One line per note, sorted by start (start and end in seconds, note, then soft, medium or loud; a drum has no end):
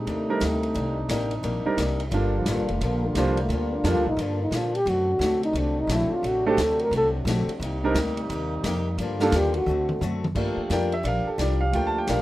0.00 2.10 C3 medium
0.00 2.07 G3 medium
0.00 0.12 G#3 medium
0.00 2.07 D4 medium
0.00 2.09 D#4 medium
0.07 0.40 D#2 medium
0.07 0.30 C3 soft
0.07 0.30 G3 soft
0.07 1.12 A3 medium
0.07 0.31 A#3 soft
0.07 0.31 D#4 medium
0.07 ride medium
0.29 0.40 G3 medium
0.29 0.40 C4 soft
0.29 0.40 D4 medium
0.29 0.40 D#4 medium
0.29 0.41 A#4 medium
0.40 0.74 D2 medium
0.40 0.63 C3 medium
0.40 0.64 G3 medium
0.40 0.64 A#3 medium
0.40 0.65 D#4 medium
0.40 snare medium
0.40 hi-hat pedal medium
0.40 ride medium
0.63 ride soft
0.75 1.08 C2 medium
0.75 0.98 C3 medium
0.75 0.98 G3 soft
0.75 0.99 A#3 soft
0.75 0.99 D#4 medium
0.75 ride medium
1.09 1.42 A1 medium
1.09 1.32 C3 medium
1.09 1.33 G3 medium
1.09 1.33 A#3 medium
1.09 1.33 D#4 medium
1.09 snare medium
1.09 hi-hat pedal medium
1.09 ride medium
1.31 ride soft
1.43 1.64 A#1 medium
1.43 1.66 C3 medium
1.43 1.67 G3 medium
1.43 1.67 A#3 medium
1.43 1.67 D#4 medium
1.43 ride medium
1.65 1.77 G3 medium
1.65 1.77 C4 medium
1.65 1.77 D4 medium
1.65 1.77 D#4 medium
1.65 1.77 A#4 medium
1.65 muted upright bass stroke soft
1.77 2.11 C2 medium
1.77 2.01 C3 medium
1.77 2.01 G3 medium
1.77 2.02 A#3 medium
1.77 2.02 D#4 medium
1.77 snare medium
1.77 hi-hat pedal medium
1.77 ride medium
2.00 ride medium
2.09 2.45 G1 medium
2.09 2.35 G2 medium
2.09 4.83 D3 medium
2.09 2.35 F3 medium
2.09 4.83 G3 medium
2.09 2.64 G3 soft
2.09 4.83 A#3 medium
2.09 2.35 A#3 medium
2.09 4.83 F4 medium
2.09 2.64 F4 medium
2.09 ride medium
2.14 2.65 A#3 medium
2.14 2.36 D4 medium
2.14 2.65 D4 soft
2.14 2.65 A4 medium
2.37 2.52 F3 medium
2.46 2.58 A1 medium
2.46 2.70 G2 medium
2.46 2.70 F3 medium
2.46 2.70 A#3 medium
2.46 2.71 D4 medium
2.46 snare medium
2.46 hi-hat pedal medium
2.46 ride medium
2.50 2.70 G3 medium
2.58 2.69 G1 medium
2.68 2.80 F1 medium
2.68 2.87 A3 medium
2.68 ride soft
2.81 3.14 A#1 medium
2.81 3.04 G2 soft
2.81 3.05 F3 soft
2.81 3.05 A#3 medium
2.81 3.05 D4 medium
2.81 ride medium
2.86 3.08 A#3 medium
3.07 3.22 D3 medium
3.15 3.48 C2 medium
3.15 3.39 G2 medium
3.15 3.39 F3 medium
3.15 3.36 G3 medium
3.15 3.36 A#3 medium
3.15 3.39 A#3 medium
3.15 3.36 D4 medium
3.15 3.40 D4 medium
3.15 3.36 F4 medium
3.15 3.36 C5 medium
3.15 snare medium
3.15 hi-hat pedal medium
3.15 ride medium
3.20 3.39 F3 medium
3.37 ride medium
3.42 3.57 A3 medium
3.49 3.82 D2 medium
3.49 3.73 G2 soft
3.49 3.73 F3 soft
3.49 3.74 A#3 medium
3.49 ride medium
3.53 3.78 A#3 medium
3.53 3.74 D4 soft
3.76 3.92 D4 medium
3.84 3.95 F2 medium
3.84 4.08 G2 medium
3.84 4.08 F3 medium
3.84 4.04 G3 medium
3.84 4.03 A#3 medium
3.84 4.08 A#3 medium
3.84 4.04 D4 medium
3.84 4.09 D4 medium
3.84 4.04 F4 medium
3.84 4.04 A4 medium
3.84 snare medium
3.84 hi-hat pedal medium
3.84 ride medium
3.90 4.08 F4 loud
3.95 4.05 D2 medium
4.05 4.16 A#1 medium
4.05 4.25 D#4 medium
4.17 4.50 G2 medium
4.17 4.41 G2 soft
4.17 4.42 F3 medium
4.17 4.42 A#3 medium
4.17 ride medium
4.22 4.43 D4 medium
4.22 4.42 D4 medium
4.42 4.58 D#4 medium
4.51 4.76 G2 medium
4.51 4.85 A#2 medium
4.51 4.76 F3 medium
4.51 4.77 A#3 medium
4.51 snare medium
4.51 hi-hat pedal medium
4.51 ride medium
4.55 4.77 D4 medium
4.55 4.77 F4 medium
4.75 4.91 G4 loud
4.75 ride medium
4.86 5.19 F#2 medium
4.86 8.95 C3 medium
4.86 5.10 D3 soft
4.86 7.59 F#3 medium
4.86 7.59 A3 medium
4.86 5.10 A3 soft
4.86 5.11 C4 medium
4.86 7.59 D4 medium
4.86 5.44 F#4 medium
4.86 ride medium
4.90 5.11 F#4 medium
5.19 5.53 D2 medium
5.19 5.44 D3 medium
5.19 5.45 A3 medium
5.19 5.45 C4 medium
5.19 5.45 F#4 medium
5.19 snare medium
5.19 hi-hat pedal medium
5.19 ride medium
5.43 5.60 D#4 medium
5.43 ride soft
5.53 5.87 C2 medium
5.53 5.78 D3 soft
5.53 5.79 A3 soft
5.53 5.79 C4 medium
5.53 5.79 F#4 medium
5.53 ride medium
5.59 5.82 D4 medium
5.80 5.96 D#4 medium
5.87 6.09 A#1 medium
5.87 6.13 D3 medium
5.87 6.13 A3 medium
5.87 6.13 C4 medium
5.87 6.13 F#4 medium
5.87 snare medium
5.87 hi-hat pedal medium
5.87 ride medium
5.94 6.15 E4 medium
6.10 muted upright bass stroke soft
6.14 6.30 F4 medium
6.23 6.57 A1 medium
6.23 6.47 D3 medium
6.23 6.47 A3 soft
6.23 6.48 C4 soft
6.23 6.48 F#4 medium
6.23 ride medium
6.29 6.48 F#4 medium
6.46 6.57 A3 medium
6.46 6.58 C4 medium
6.46 6.58 D4 medium
6.46 6.58 F#4 medium
6.46 6.64 G4 medium
6.46 6.58 A4 medium
6.57 6.91 D2 loud
6.57 6.81 D3 medium
6.57 6.82 A3 medium
6.57 6.82 C4 medium
6.57 snare medium
6.57 hi-hat pedal medium
6.57 ride medium
6.61 6.83 F#4 medium
6.61 6.84 A4 loud
6.79 6.94 A#4 loud
6.79 ride soft
6.91 7.24 C2 medium
6.91 7.16 D3 soft
6.91 7.16 A3 soft
6.91 7.17 C4 medium
6.91 ride medium
6.96 7.17 F#4 medium
6.96 7.09 A4 loud
7.25 7.46 A#1 loud
7.25 7.50 D3 medium
7.25 7.50 A3 medium
7.25 7.50 C4 medium
7.25 7.50 F#4 medium
7.25 snare medium
7.25 hi-hat pedal medium
7.25 ride medium
7.47 muted upright bass stroke soft
7.47 ride medium
7.59 7.94 C2 medium
7.59 7.84 C3 soft
7.59 8.96 G3 medium
7.59 9.64 A#3 medium
7.59 7.85 A#3 medium
7.59 8.96 D#4 medium
7.59 7.85 D#4 medium
7.59 ride medium
7.64 7.86 G4 medium
7.84 7.95 G3 medium
7.84 7.95 C4 medium
7.84 7.95 D4 medium
7.84 7.95 D#4 medium
7.84 7.95 A#4 medium
7.94 8.28 D2 loud
7.94 8.19 C3 medium
7.94 8.19 A#3 medium
7.94 8.19 D#4 medium
7.94 8.20 G4 medium
7.94 snare medium
7.94 hi-hat pedal medium
7.94 ride medium
8.17 ride soft
8.29 8.63 D#2 medium
8.29 8.53 C3 medium
8.29 8.54 A#3 medium
8.29 8.54 D#4 medium
8.29 8.54 G4 medium
8.29 ride medium
8.64 8.97 F2 medium
8.64 8.87 C3 medium
8.64 8.88 A#3 medium
8.64 8.88 D#4 medium
8.64 8.88 G4 medium
8.64 snare medium
8.64 hi-hat pedal medium
8.64 ride medium
8.98 9.31 G2 medium
8.98 9.22 G2 soft
8.98 10.17 D3 medium
8.98 9.22 F3 medium
8.98 9.67 G3 medium
8.98 9.23 A#3 medium
8.98 9.67 F4 medium
8.98 ride medium
9.02 9.23 D4 medium
9.20 9.32 G3 medium
9.20 9.32 A#3 medium
9.20 9.33 D4 medium
9.20 9.33 F4 medium
9.20 9.38 A4 loud
9.20 9.33 A4 medium
9.20 snare medium
9.32 9.66 D#2 loud
9.32 9.56 G2 medium
9.32 9.56 F3 medium
9.32 9.57 A#3 medium
9.32 9.57 D4 medium
9.32 snare medium
9.32 hi-hat pedal medium
9.32 ride medium
9.37 9.56 G4 loud
9.54 9.87 F#4 medium
9.54 ride soft
9.65 10.00 D2 medium
9.65 9.90 D3 medium
9.65 10.17 A3 medium
9.65 10.17 C4 medium
9.65 10.17 F#4 medium
9.65 high tom medium
9.69 9.91 A3 medium
9.69 9.91 C4 medium
9.69 9.92 F#4 medium
9.89 high tom medium
10.01 10.35 F#2 medium
10.01 10.25 D3 medium
10.01 10.25 A3 medium
10.01 10.25 C4 medium
10.01 10.26 F#4 medium
10.01 hi-hat pedal medium
10.01 high tom medium
10.24 high tom loud
10.34 10.55 G2 medium
10.34 12.22 F3 medium
10.34 10.59 G3 medium
10.34 10.89 A3 soft
10.34 10.89 A#3 soft
10.34 12.22 D4 medium
10.34 10.59 D4 medium
10.34 10.89 F4 soft
10.34 10.59 F4 medium
10.34 12.22 G4 medium
10.34 10.60 A#4 medium
10.34 kick medium
10.34 crash medium
10.57 muted upright bass stroke soft
10.70 11.03 F2 medium
10.70 10.93 G3 medium
10.70 10.94 D4 medium
10.70 10.94 F4 medium
10.70 10.94 A#4 medium
10.70 10.92 G5 medium
10.70 snare medium
10.70 hi-hat pedal medium
10.70 ride medium
10.92 11.05 E5 medium
10.92 ride soft
11.03 11.24 A#1 medium
11.03 11.27 G3 soft
11.03 11.27 D4 soft
11.03 11.28 F4 soft
11.03 11.28 A#4 medium
11.03 11.27 F5 medium
11.03 ride medium
11.26 11.39 A4 medium
11.26 muted upright bass stroke soft
11.38 11.72 C2 medium
11.38 11.61 G3 medium
11.38 11.62 D4 medium
11.38 11.62 F4 medium
11.38 11.62 A#4 medium
11.38 11.61 D5 medium
11.38 snare medium
11.38 hi-hat pedal medium
11.38 ride medium
11.61 11.73 F5 medium
11.72 12.06 D2 medium
11.72 11.96 G3 medium
11.72 12.22 A3 soft
11.72 12.22 A#3 soft
11.72 11.97 D4 soft
11.72 12.22 F4 medium
11.72 11.97 F4 soft
11.72 11.97 A#4 soft
11.72 11.85 G5 medium
11.72 ride medium
11.87 11.97 A5 medium
11.98 12.08 G5 medium
12.07 12.22 A#1 medium
12.07 12.22 G3 medium
12.07 12.22 D4 medium
12.07 12.22 F4 medium
12.07 12.22 A#4 medium
12.07 12.22 F5 medium
12.07 snare medium
12.07 hi-hat pedal medium
12.07 ride medium